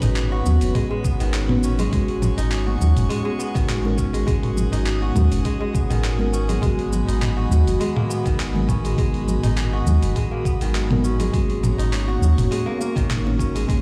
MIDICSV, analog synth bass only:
0, 0, Header, 1, 2, 480
1, 0, Start_track
1, 0, Key_signature, 5, "minor"
1, 0, Tempo, 588235
1, 1571, Time_signature, 4, 2, 24, 8
1, 11275, End_track
2, 0, Start_track
2, 0, Title_t, "Analog synth bass"
2, 0, Program_c, 0, 38
2, 26, Note_on_c, 0, 32, 84
2, 341, Note_off_c, 0, 32, 0
2, 377, Note_on_c, 0, 39, 105
2, 478, Note_off_c, 0, 39, 0
2, 502, Note_on_c, 0, 30, 98
2, 592, Note_off_c, 0, 30, 0
2, 985, Note_on_c, 0, 32, 80
2, 1541, Note_off_c, 0, 32, 0
2, 1574, Note_on_c, 0, 32, 93
2, 1903, Note_off_c, 0, 32, 0
2, 1946, Note_on_c, 0, 32, 84
2, 2261, Note_off_c, 0, 32, 0
2, 2296, Note_on_c, 0, 39, 107
2, 2398, Note_off_c, 0, 39, 0
2, 2425, Note_on_c, 0, 30, 105
2, 2513, Note_off_c, 0, 30, 0
2, 2899, Note_on_c, 0, 32, 75
2, 3458, Note_off_c, 0, 32, 0
2, 3490, Note_on_c, 0, 32, 94
2, 3820, Note_off_c, 0, 32, 0
2, 3857, Note_on_c, 0, 32, 78
2, 4177, Note_off_c, 0, 32, 0
2, 4210, Note_on_c, 0, 39, 106
2, 4314, Note_off_c, 0, 39, 0
2, 4337, Note_on_c, 0, 30, 106
2, 4429, Note_off_c, 0, 30, 0
2, 4821, Note_on_c, 0, 32, 81
2, 5379, Note_off_c, 0, 32, 0
2, 5410, Note_on_c, 0, 32, 85
2, 5741, Note_off_c, 0, 32, 0
2, 5780, Note_on_c, 0, 32, 86
2, 6098, Note_off_c, 0, 32, 0
2, 6129, Note_on_c, 0, 39, 102
2, 6234, Note_off_c, 0, 39, 0
2, 6256, Note_on_c, 0, 30, 109
2, 6349, Note_off_c, 0, 30, 0
2, 6738, Note_on_c, 0, 32, 81
2, 7297, Note_off_c, 0, 32, 0
2, 7328, Note_on_c, 0, 32, 87
2, 7659, Note_off_c, 0, 32, 0
2, 7696, Note_on_c, 0, 32, 78
2, 8016, Note_off_c, 0, 32, 0
2, 8047, Note_on_c, 0, 39, 106
2, 8153, Note_off_c, 0, 39, 0
2, 8180, Note_on_c, 0, 30, 105
2, 8271, Note_off_c, 0, 30, 0
2, 8661, Note_on_c, 0, 32, 81
2, 9219, Note_off_c, 0, 32, 0
2, 9249, Note_on_c, 0, 32, 92
2, 9580, Note_off_c, 0, 32, 0
2, 9622, Note_on_c, 0, 32, 88
2, 9939, Note_off_c, 0, 32, 0
2, 9966, Note_on_c, 0, 39, 107
2, 10073, Note_off_c, 0, 39, 0
2, 10098, Note_on_c, 0, 30, 108
2, 10190, Note_off_c, 0, 30, 0
2, 10578, Note_on_c, 0, 32, 85
2, 11137, Note_off_c, 0, 32, 0
2, 11169, Note_on_c, 0, 32, 91
2, 11275, Note_off_c, 0, 32, 0
2, 11275, End_track
0, 0, End_of_file